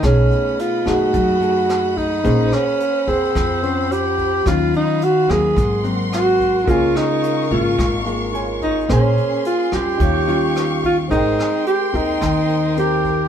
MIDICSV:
0, 0, Header, 1, 7, 480
1, 0, Start_track
1, 0, Key_signature, -4, "major"
1, 0, Tempo, 554017
1, 26, Time_signature, 4, 2, 24, 8
1, 11507, End_track
2, 0, Start_track
2, 0, Title_t, "Violin section"
2, 0, Program_c, 0, 48
2, 26, Note_on_c, 0, 83, 69
2, 31, Note_on_c, 0, 78, 62
2, 35, Note_on_c, 0, 75, 58
2, 1932, Note_off_c, 0, 75, 0
2, 1948, Note_on_c, 0, 72, 65
2, 3835, Note_off_c, 0, 78, 0
2, 3849, Note_off_c, 0, 72, 0
2, 3854, Note_on_c, 0, 65, 65
2, 3854, Note_on_c, 0, 77, 63
2, 4792, Note_off_c, 0, 83, 0
2, 4804, Note_on_c, 0, 78, 61
2, 4808, Note_on_c, 0, 70, 68
2, 4811, Note_off_c, 0, 65, 0
2, 4811, Note_off_c, 0, 77, 0
2, 4811, Note_on_c, 0, 84, 75
2, 5766, Note_off_c, 0, 78, 0
2, 5770, Note_off_c, 0, 84, 0
2, 5774, Note_on_c, 0, 85, 72
2, 5778, Note_on_c, 0, 77, 63
2, 7668, Note_off_c, 0, 70, 0
2, 7681, Note_off_c, 0, 85, 0
2, 7683, Note_off_c, 0, 77, 0
2, 7714, Note_on_c, 0, 68, 67
2, 7719, Note_on_c, 0, 84, 68
2, 8661, Note_off_c, 0, 68, 0
2, 8663, Note_off_c, 0, 84, 0
2, 8667, Note_on_c, 0, 67, 65
2, 8670, Note_on_c, 0, 77, 61
2, 8673, Note_on_c, 0, 85, 74
2, 9617, Note_off_c, 0, 67, 0
2, 9619, Note_off_c, 0, 77, 0
2, 9620, Note_off_c, 0, 85, 0
2, 9622, Note_on_c, 0, 84, 73
2, 9624, Note_on_c, 0, 70, 70
2, 9628, Note_on_c, 0, 79, 63
2, 11507, Note_off_c, 0, 70, 0
2, 11507, Note_off_c, 0, 79, 0
2, 11507, Note_off_c, 0, 84, 0
2, 11507, End_track
3, 0, Start_track
3, 0, Title_t, "Grand piano"
3, 0, Program_c, 1, 0
3, 5754, Note_on_c, 1, 65, 45
3, 5771, Note_on_c, 1, 70, 38
3, 5786, Note_on_c, 1, 73, 39
3, 5810, Note_on_c, 1, 80, 46
3, 5963, Control_c, 1, 64, 127
3, 7181, Note_off_c, 1, 65, 0
3, 7190, Note_off_c, 1, 70, 0
3, 7198, Note_off_c, 1, 73, 0
3, 7210, Note_off_c, 1, 80, 0
3, 7211, Note_on_c, 1, 65, 39
3, 7215, Note_on_c, 1, 70, 37
3, 7226, Note_on_c, 1, 73, 37
3, 7233, Note_on_c, 1, 80, 41
3, 7687, Note_on_c, 1, 61, 42
3, 7688, Note_off_c, 1, 70, 0
3, 7699, Note_off_c, 1, 65, 0
3, 7701, Note_on_c, 1, 70, 41
3, 7706, Note_off_c, 1, 73, 0
3, 7710, Note_off_c, 1, 80, 0
3, 7718, Note_on_c, 1, 72, 38
3, 7719, Control_c, 1, 64, 0
3, 7738, Note_on_c, 1, 80, 49
3, 7868, Control_c, 1, 64, 127
3, 8637, Note_off_c, 1, 61, 0
3, 8641, Note_on_c, 1, 63, 44
3, 8645, Note_off_c, 1, 70, 0
3, 8653, Note_off_c, 1, 72, 0
3, 8659, Note_on_c, 1, 67, 42
3, 8663, Note_off_c, 1, 80, 0
3, 8676, Control_c, 1, 64, 0
3, 8678, Note_on_c, 1, 73, 42
3, 8689, Note_on_c, 1, 77, 51
3, 8854, Control_c, 1, 64, 127
3, 9594, Note_off_c, 1, 63, 0
3, 9598, Note_on_c, 1, 60, 48
3, 9603, Note_off_c, 1, 67, 0
3, 9613, Note_off_c, 1, 73, 0
3, 9619, Note_off_c, 1, 77, 0
3, 9635, Note_on_c, 1, 70, 45
3, 9637, Control_c, 1, 64, 0
3, 9652, Note_on_c, 1, 79, 48
3, 9806, Control_c, 1, 64, 127
3, 11497, Note_off_c, 1, 60, 0
3, 11507, Note_off_c, 1, 70, 0
3, 11507, Note_off_c, 1, 79, 0
3, 11507, End_track
4, 0, Start_track
4, 0, Title_t, "Alto saxophone"
4, 0, Program_c, 2, 65
4, 37, Note_on_c, 2, 61, 75
4, 523, Note_on_c, 2, 65, 82
4, 536, Note_off_c, 2, 61, 0
4, 759, Note_on_c, 2, 66, 87
4, 772, Note_off_c, 2, 65, 0
4, 1707, Note_on_c, 2, 63, 81
4, 1720, Note_off_c, 2, 66, 0
4, 2199, Note_on_c, 2, 61, 98
4, 2212, Note_off_c, 2, 63, 0
4, 2670, Note_on_c, 2, 60, 82
4, 2683, Note_off_c, 2, 61, 0
4, 3395, Note_on_c, 2, 67, 93
4, 3408, Note_off_c, 2, 60, 0
4, 3882, Note_on_c, 2, 65, 90
4, 3895, Note_off_c, 2, 67, 0
4, 4115, Note_off_c, 2, 65, 0
4, 4127, Note_on_c, 2, 63, 88
4, 4361, Note_on_c, 2, 66, 92
4, 4374, Note_off_c, 2, 63, 0
4, 4596, Note_on_c, 2, 68, 82
4, 4609, Note_off_c, 2, 66, 0
4, 5078, Note_off_c, 2, 68, 0
4, 5318, Note_on_c, 2, 66, 94
4, 5798, Note_on_c, 2, 65, 84
4, 5811, Note_off_c, 2, 66, 0
4, 6033, Note_on_c, 2, 63, 94
4, 6046, Note_off_c, 2, 65, 0
4, 6510, Note_off_c, 2, 63, 0
4, 6526, Note_on_c, 2, 65, 75
4, 6964, Note_off_c, 2, 65, 0
4, 7477, Note_on_c, 2, 63, 83
4, 7695, Note_off_c, 2, 63, 0
4, 7733, Note_on_c, 2, 61, 84
4, 8167, Note_off_c, 2, 61, 0
4, 8200, Note_on_c, 2, 65, 85
4, 8445, Note_on_c, 2, 67, 96
4, 8458, Note_off_c, 2, 65, 0
4, 9396, Note_off_c, 2, 67, 0
4, 9406, Note_on_c, 2, 65, 82
4, 9509, Note_off_c, 2, 65, 0
4, 9627, Note_on_c, 2, 63, 85
4, 10073, Note_off_c, 2, 63, 0
4, 10107, Note_on_c, 2, 67, 91
4, 10357, Note_on_c, 2, 63, 85
4, 10370, Note_off_c, 2, 67, 0
4, 11072, Note_off_c, 2, 63, 0
4, 11084, Note_on_c, 2, 67, 85
4, 11507, Note_off_c, 2, 67, 0
4, 11507, End_track
5, 0, Start_track
5, 0, Title_t, "Nylon-string guitar"
5, 0, Program_c, 3, 24
5, 28, Note_on_c, 3, 47, 49
5, 30, Note_on_c, 3, 57, 49
5, 31, Note_on_c, 3, 63, 49
5, 35, Note_on_c, 3, 68, 60
5, 709, Note_off_c, 3, 63, 0
5, 710, Note_off_c, 3, 57, 0
5, 712, Note_off_c, 3, 68, 0
5, 742, Note_on_c, 3, 57, 58
5, 747, Note_on_c, 3, 63, 59
5, 754, Note_on_c, 3, 68, 66
5, 964, Note_off_c, 3, 47, 0
5, 982, Note_on_c, 3, 54, 50
5, 1186, Note_off_c, 3, 57, 0
5, 1188, Note_off_c, 3, 63, 0
5, 1192, Note_off_c, 3, 68, 0
5, 1220, Note_on_c, 3, 57, 57
5, 1223, Note_on_c, 3, 63, 56
5, 1227, Note_on_c, 3, 68, 57
5, 1905, Note_off_c, 3, 57, 0
5, 1907, Note_off_c, 3, 63, 0
5, 1907, Note_off_c, 3, 68, 0
5, 1921, Note_off_c, 3, 54, 0
5, 1936, Note_on_c, 3, 58, 52
5, 1942, Note_on_c, 3, 61, 54
5, 1944, Note_on_c, 3, 68, 57
5, 1950, Note_on_c, 3, 72, 60
5, 2421, Note_off_c, 3, 61, 0
5, 2423, Note_off_c, 3, 68, 0
5, 2424, Note_off_c, 3, 72, 0
5, 2666, Note_on_c, 3, 68, 63
5, 2671, Note_on_c, 3, 72, 57
5, 2878, Note_off_c, 3, 58, 0
5, 2902, Note_on_c, 3, 53, 49
5, 3109, Note_off_c, 3, 68, 0
5, 3109, Note_off_c, 3, 72, 0
5, 3145, Note_on_c, 3, 61, 56
5, 3150, Note_on_c, 3, 72, 56
5, 3828, Note_off_c, 3, 61, 0
5, 3830, Note_off_c, 3, 72, 0
5, 3841, Note_off_c, 3, 53, 0
5, 3867, Note_on_c, 3, 51, 50
5, 3869, Note_on_c, 3, 54, 50
5, 3873, Note_on_c, 3, 61, 53
5, 3874, Note_on_c, 3, 65, 55
5, 4345, Note_off_c, 3, 54, 0
5, 4346, Note_off_c, 3, 61, 0
5, 4348, Note_off_c, 3, 65, 0
5, 4576, Note_on_c, 3, 54, 55
5, 4581, Note_on_c, 3, 58, 52
5, 4588, Note_on_c, 3, 60, 59
5, 4804, Note_off_c, 3, 51, 0
5, 4814, Note_on_c, 3, 44, 47
5, 5023, Note_off_c, 3, 54, 0
5, 5026, Note_off_c, 3, 58, 0
5, 5027, Note_off_c, 3, 60, 0
5, 5056, Note_on_c, 3, 54, 56
5, 5059, Note_on_c, 3, 58, 51
5, 5066, Note_on_c, 3, 60, 63
5, 5743, Note_off_c, 3, 54, 0
5, 5744, Note_off_c, 3, 58, 0
5, 5748, Note_off_c, 3, 60, 0
5, 5756, Note_off_c, 3, 44, 0
5, 5776, Note_on_c, 3, 49, 49
5, 5780, Note_on_c, 3, 56, 54
5, 5787, Note_on_c, 3, 58, 50
5, 5788, Note_on_c, 3, 65, 53
5, 6465, Note_off_c, 3, 56, 0
5, 6466, Note_off_c, 3, 58, 0
5, 6469, Note_off_c, 3, 65, 0
5, 6501, Note_on_c, 3, 56, 55
5, 6504, Note_on_c, 3, 58, 58
5, 6510, Note_on_c, 3, 65, 68
5, 6719, Note_off_c, 3, 49, 0
5, 6739, Note_on_c, 3, 44, 48
5, 6946, Note_off_c, 3, 56, 0
5, 6948, Note_off_c, 3, 58, 0
5, 6949, Note_off_c, 3, 65, 0
5, 6982, Note_on_c, 3, 56, 50
5, 6987, Note_on_c, 3, 58, 55
5, 6992, Note_on_c, 3, 65, 56
5, 7667, Note_off_c, 3, 56, 0
5, 7667, Note_off_c, 3, 58, 0
5, 7671, Note_off_c, 3, 65, 0
5, 7679, Note_off_c, 3, 44, 0
5, 7700, Note_on_c, 3, 58, 54
5, 7702, Note_on_c, 3, 61, 53
5, 7705, Note_on_c, 3, 68, 53
5, 7709, Note_on_c, 3, 72, 55
5, 8385, Note_off_c, 3, 61, 0
5, 8387, Note_off_c, 3, 68, 0
5, 8389, Note_off_c, 3, 72, 0
5, 8419, Note_off_c, 3, 58, 0
5, 8423, Note_on_c, 3, 55, 55
5, 8428, Note_on_c, 3, 61, 52
5, 8431, Note_on_c, 3, 65, 65
5, 8665, Note_on_c, 3, 51, 52
5, 8866, Note_off_c, 3, 55, 0
5, 8869, Note_off_c, 3, 61, 0
5, 8870, Note_off_c, 3, 65, 0
5, 8901, Note_on_c, 3, 55, 55
5, 8904, Note_on_c, 3, 61, 56
5, 8911, Note_on_c, 3, 65, 62
5, 9585, Note_off_c, 3, 55, 0
5, 9587, Note_off_c, 3, 61, 0
5, 9590, Note_off_c, 3, 65, 0
5, 9602, Note_off_c, 3, 51, 0
5, 9614, Note_on_c, 3, 56, 53
5, 9617, Note_on_c, 3, 60, 53
5, 9619, Note_on_c, 3, 67, 45
5, 9623, Note_on_c, 3, 70, 53
5, 10302, Note_off_c, 3, 60, 0
5, 10305, Note_off_c, 3, 67, 0
5, 10306, Note_off_c, 3, 70, 0
5, 10335, Note_on_c, 3, 60, 60
5, 10340, Note_on_c, 3, 67, 57
5, 10343, Note_on_c, 3, 70, 62
5, 10557, Note_off_c, 3, 56, 0
5, 10580, Note_on_c, 3, 51, 52
5, 11023, Note_off_c, 3, 60, 0
5, 11025, Note_off_c, 3, 67, 0
5, 11026, Note_off_c, 3, 70, 0
5, 11061, Note_on_c, 3, 60, 44
5, 11066, Note_on_c, 3, 67, 50
5, 11071, Note_on_c, 3, 70, 51
5, 11374, Note_off_c, 3, 60, 0
5, 11375, Note_off_c, 3, 67, 0
5, 11375, Note_off_c, 3, 70, 0
5, 11507, Note_off_c, 3, 51, 0
5, 11507, End_track
6, 0, Start_track
6, 0, Title_t, "Upright bass"
6, 0, Program_c, 4, 32
6, 28, Note_on_c, 4, 35, 88
6, 250, Note_off_c, 4, 35, 0
6, 749, Note_on_c, 4, 42, 79
6, 971, Note_off_c, 4, 42, 0
6, 990, Note_on_c, 4, 42, 80
6, 1914, Note_off_c, 4, 42, 0
6, 1952, Note_on_c, 4, 34, 93
6, 2173, Note_off_c, 4, 34, 0
6, 2665, Note_on_c, 4, 41, 73
6, 2889, Note_off_c, 4, 41, 0
6, 2908, Note_on_c, 4, 41, 86
6, 3833, Note_off_c, 4, 41, 0
6, 3865, Note_on_c, 4, 39, 86
6, 4089, Note_off_c, 4, 39, 0
6, 4585, Note_on_c, 4, 39, 76
6, 4809, Note_off_c, 4, 39, 0
6, 4820, Note_on_c, 4, 32, 80
6, 5749, Note_off_c, 4, 32, 0
6, 5784, Note_on_c, 4, 37, 80
6, 6009, Note_off_c, 4, 37, 0
6, 6507, Note_on_c, 4, 32, 77
6, 6730, Note_off_c, 4, 32, 0
6, 6748, Note_on_c, 4, 32, 82
6, 7673, Note_off_c, 4, 32, 0
6, 7712, Note_on_c, 4, 34, 83
6, 7933, Note_off_c, 4, 34, 0
6, 8426, Note_on_c, 4, 41, 72
6, 8650, Note_off_c, 4, 41, 0
6, 8663, Note_on_c, 4, 39, 81
6, 9590, Note_off_c, 4, 39, 0
6, 9630, Note_on_c, 4, 32, 90
6, 9852, Note_off_c, 4, 32, 0
6, 10343, Note_on_c, 4, 39, 83
6, 10568, Note_off_c, 4, 39, 0
6, 10585, Note_on_c, 4, 39, 86
6, 11507, Note_off_c, 4, 39, 0
6, 11507, End_track
7, 0, Start_track
7, 0, Title_t, "Drums"
7, 23, Note_on_c, 9, 37, 57
7, 23, Note_on_c, 9, 42, 41
7, 27, Note_on_c, 9, 36, 56
7, 110, Note_off_c, 9, 37, 0
7, 110, Note_off_c, 9, 42, 0
7, 113, Note_off_c, 9, 36, 0
7, 269, Note_on_c, 9, 42, 26
7, 356, Note_off_c, 9, 42, 0
7, 512, Note_on_c, 9, 42, 42
7, 598, Note_off_c, 9, 42, 0
7, 748, Note_on_c, 9, 36, 22
7, 752, Note_on_c, 9, 37, 55
7, 752, Note_on_c, 9, 42, 25
7, 835, Note_off_c, 9, 36, 0
7, 839, Note_off_c, 9, 37, 0
7, 839, Note_off_c, 9, 42, 0
7, 986, Note_on_c, 9, 42, 42
7, 987, Note_on_c, 9, 36, 56
7, 1073, Note_off_c, 9, 42, 0
7, 1074, Note_off_c, 9, 36, 0
7, 1228, Note_on_c, 9, 42, 25
7, 1315, Note_off_c, 9, 42, 0
7, 1466, Note_on_c, 9, 37, 53
7, 1466, Note_on_c, 9, 42, 37
7, 1553, Note_off_c, 9, 37, 0
7, 1553, Note_off_c, 9, 42, 0
7, 1707, Note_on_c, 9, 36, 23
7, 1709, Note_on_c, 9, 42, 24
7, 1793, Note_off_c, 9, 36, 0
7, 1796, Note_off_c, 9, 42, 0
7, 1947, Note_on_c, 9, 36, 57
7, 1949, Note_on_c, 9, 42, 40
7, 2033, Note_off_c, 9, 36, 0
7, 2035, Note_off_c, 9, 42, 0
7, 2183, Note_on_c, 9, 37, 51
7, 2183, Note_on_c, 9, 42, 23
7, 2270, Note_off_c, 9, 37, 0
7, 2270, Note_off_c, 9, 42, 0
7, 2427, Note_on_c, 9, 42, 38
7, 2514, Note_off_c, 9, 42, 0
7, 2664, Note_on_c, 9, 36, 20
7, 2667, Note_on_c, 9, 42, 23
7, 2751, Note_off_c, 9, 36, 0
7, 2754, Note_off_c, 9, 42, 0
7, 2905, Note_on_c, 9, 36, 57
7, 2909, Note_on_c, 9, 37, 56
7, 2909, Note_on_c, 9, 42, 42
7, 2992, Note_off_c, 9, 36, 0
7, 2996, Note_off_c, 9, 37, 0
7, 2996, Note_off_c, 9, 42, 0
7, 3148, Note_on_c, 9, 42, 23
7, 3234, Note_off_c, 9, 42, 0
7, 3392, Note_on_c, 9, 42, 40
7, 3478, Note_off_c, 9, 42, 0
7, 3623, Note_on_c, 9, 36, 22
7, 3624, Note_on_c, 9, 42, 25
7, 3710, Note_off_c, 9, 36, 0
7, 3711, Note_off_c, 9, 42, 0
7, 3863, Note_on_c, 9, 36, 56
7, 3865, Note_on_c, 9, 37, 55
7, 3865, Note_on_c, 9, 42, 41
7, 3950, Note_off_c, 9, 36, 0
7, 3952, Note_off_c, 9, 37, 0
7, 3952, Note_off_c, 9, 42, 0
7, 4105, Note_on_c, 9, 42, 26
7, 4191, Note_off_c, 9, 42, 0
7, 4344, Note_on_c, 9, 42, 43
7, 4431, Note_off_c, 9, 42, 0
7, 4582, Note_on_c, 9, 36, 21
7, 4587, Note_on_c, 9, 37, 49
7, 4587, Note_on_c, 9, 42, 26
7, 4669, Note_off_c, 9, 36, 0
7, 4674, Note_off_c, 9, 37, 0
7, 4674, Note_off_c, 9, 42, 0
7, 4822, Note_on_c, 9, 36, 56
7, 4828, Note_on_c, 9, 42, 44
7, 4909, Note_off_c, 9, 36, 0
7, 4914, Note_off_c, 9, 42, 0
7, 5061, Note_on_c, 9, 42, 25
7, 5148, Note_off_c, 9, 42, 0
7, 5308, Note_on_c, 9, 37, 53
7, 5308, Note_on_c, 9, 42, 38
7, 5394, Note_off_c, 9, 37, 0
7, 5394, Note_off_c, 9, 42, 0
7, 5544, Note_on_c, 9, 36, 22
7, 5553, Note_on_c, 9, 42, 23
7, 5630, Note_off_c, 9, 36, 0
7, 5639, Note_off_c, 9, 42, 0
7, 5783, Note_on_c, 9, 36, 58
7, 5789, Note_on_c, 9, 42, 40
7, 5870, Note_off_c, 9, 36, 0
7, 5875, Note_off_c, 9, 42, 0
7, 6027, Note_on_c, 9, 37, 54
7, 6027, Note_on_c, 9, 42, 23
7, 6114, Note_off_c, 9, 37, 0
7, 6114, Note_off_c, 9, 42, 0
7, 6268, Note_on_c, 9, 42, 41
7, 6354, Note_off_c, 9, 42, 0
7, 6505, Note_on_c, 9, 36, 22
7, 6508, Note_on_c, 9, 42, 22
7, 6591, Note_off_c, 9, 36, 0
7, 6595, Note_off_c, 9, 42, 0
7, 6746, Note_on_c, 9, 36, 57
7, 6748, Note_on_c, 9, 37, 57
7, 6748, Note_on_c, 9, 42, 39
7, 6832, Note_off_c, 9, 36, 0
7, 6835, Note_off_c, 9, 37, 0
7, 6835, Note_off_c, 9, 42, 0
7, 6992, Note_on_c, 9, 42, 22
7, 7079, Note_off_c, 9, 42, 0
7, 7230, Note_on_c, 9, 42, 35
7, 7316, Note_off_c, 9, 42, 0
7, 7466, Note_on_c, 9, 36, 23
7, 7466, Note_on_c, 9, 42, 25
7, 7553, Note_off_c, 9, 36, 0
7, 7553, Note_off_c, 9, 42, 0
7, 7706, Note_on_c, 9, 37, 59
7, 7706, Note_on_c, 9, 42, 39
7, 7707, Note_on_c, 9, 36, 56
7, 7793, Note_off_c, 9, 36, 0
7, 7793, Note_off_c, 9, 37, 0
7, 7793, Note_off_c, 9, 42, 0
7, 7947, Note_on_c, 9, 42, 25
7, 8034, Note_off_c, 9, 42, 0
7, 8184, Note_on_c, 9, 42, 39
7, 8270, Note_off_c, 9, 42, 0
7, 8420, Note_on_c, 9, 37, 53
7, 8420, Note_on_c, 9, 42, 23
7, 8425, Note_on_c, 9, 36, 22
7, 8507, Note_off_c, 9, 37, 0
7, 8507, Note_off_c, 9, 42, 0
7, 8511, Note_off_c, 9, 36, 0
7, 8662, Note_on_c, 9, 42, 44
7, 8665, Note_on_c, 9, 36, 54
7, 8749, Note_off_c, 9, 42, 0
7, 8752, Note_off_c, 9, 36, 0
7, 8909, Note_on_c, 9, 42, 27
7, 8996, Note_off_c, 9, 42, 0
7, 9150, Note_on_c, 9, 37, 52
7, 9150, Note_on_c, 9, 42, 42
7, 9236, Note_off_c, 9, 37, 0
7, 9236, Note_off_c, 9, 42, 0
7, 9386, Note_on_c, 9, 36, 22
7, 9391, Note_on_c, 9, 42, 25
7, 9473, Note_off_c, 9, 36, 0
7, 9478, Note_off_c, 9, 42, 0
7, 9627, Note_on_c, 9, 36, 56
7, 9633, Note_on_c, 9, 42, 45
7, 9713, Note_off_c, 9, 36, 0
7, 9720, Note_off_c, 9, 42, 0
7, 9870, Note_on_c, 9, 37, 56
7, 9870, Note_on_c, 9, 42, 25
7, 9957, Note_off_c, 9, 37, 0
7, 9957, Note_off_c, 9, 42, 0
7, 10105, Note_on_c, 9, 42, 41
7, 10192, Note_off_c, 9, 42, 0
7, 10343, Note_on_c, 9, 36, 22
7, 10348, Note_on_c, 9, 42, 22
7, 10430, Note_off_c, 9, 36, 0
7, 10435, Note_off_c, 9, 42, 0
7, 10582, Note_on_c, 9, 36, 57
7, 10585, Note_on_c, 9, 37, 57
7, 10585, Note_on_c, 9, 42, 40
7, 10668, Note_off_c, 9, 36, 0
7, 10672, Note_off_c, 9, 37, 0
7, 10672, Note_off_c, 9, 42, 0
7, 10824, Note_on_c, 9, 42, 23
7, 10911, Note_off_c, 9, 42, 0
7, 11064, Note_on_c, 9, 42, 36
7, 11150, Note_off_c, 9, 42, 0
7, 11301, Note_on_c, 9, 36, 22
7, 11303, Note_on_c, 9, 42, 22
7, 11388, Note_off_c, 9, 36, 0
7, 11390, Note_off_c, 9, 42, 0
7, 11507, End_track
0, 0, End_of_file